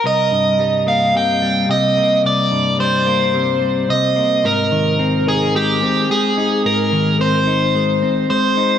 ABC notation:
X:1
M:4/4
L:1/8
Q:1/4=109
K:Cm
V:1 name="Overdriven electric guitar"
e3 f g2 e2 | d2 c4 e2 | B3 A G2 A2 | B2 c4 c2 |]
V:2 name="Clean electric guitar" clef=bass
C,, G,, G, B, C, G, C, B, | C,, G,, G, B, C, G, C, B, | A,, E, C E A, C A, E | A,, E, C E A, C A, E |]